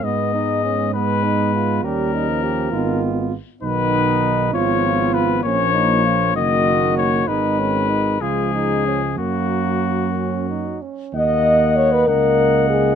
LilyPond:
<<
  \new Staff \with { instrumentName = "Trumpet" } { \time 6/8 \key fis \major \tempo 4. = 66 dis''4. b'4. | ais'2 r4 | b'4. cis''4 ces''8 | cis''4. dis''4 cis''8 |
b'4. gis'4. | fis'2~ fis'8 r8 | \key ees \minor ges''4. ges''4. | }
  \new Staff \with { instrumentName = "Flugelhorn" } { \time 6/8 \key fis \major b8 dis'8 cis'8 b8 dis'8 eis'8 | g'8 dis'8 g'8 eis'4 r8 | dis'4. f'4. | cis'8 dis'8 eis'8 fis'4. |
dis'8 cis'8 dis'8 eis'8 dis'8 cis'8 | ais4. cis'8 dis'8 cis'8 | \key ees \minor ees''4. ees''4. | }
  \new Staff \with { instrumentName = "French horn" } { \time 6/8 \key fis \major b4. b4. | cis'4. b4 r8 | b4. ces'4. | ais4. ais4. |
gis4. gis4. | ais2~ ais8 r8 | \key ees \minor ees''4 des''16 ces''16 bes'4 aes'8 | }
  \new Staff \with { instrumentName = "Euphonium" } { \clef bass \time 6/8 \key fis \major gis4. gis4. | g8. eis8. dis4 r8 | dis4. f4. | eis4. dis4. |
dis4. eis4. | fis2~ fis8 r8 | \key ees \minor bes4. bes4. | }
  \new Staff \with { instrumentName = "Tuba" } { \clef bass \time 6/8 \key fis \major gis,2. | dis,4. gis,,4 r8 | b,,4. aes,,4. | ais,,4. fis,,4. |
gis,,4. cis,4. | fis,2~ fis,8 r8 | \key ees \minor ees,4. des,4. | }
>>